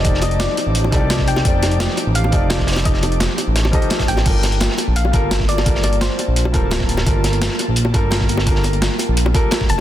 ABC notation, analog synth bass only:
X:1
M:4/4
L:1/16
Q:1/4=171
K:Gm
V:1 name="Analog synth bass" clef=bass
F,,,4- F,,, z2 A,,,3 C,,6 | F,,,4- F,,, z2 A,,,3 F,,,6- | F,,,4- F,,, z2 A,,,3 z4 A,,,2 | G,,,4- G,,, z2 B,,,3 G,,,6- |
G,,,4- G,,, z2 B,,,3 D,,,6 | G,,,4- G,,, z2 B,,,3 G,,,6- | G,,,4- G,,, z2 B,,,3 z4 F,,,2 |]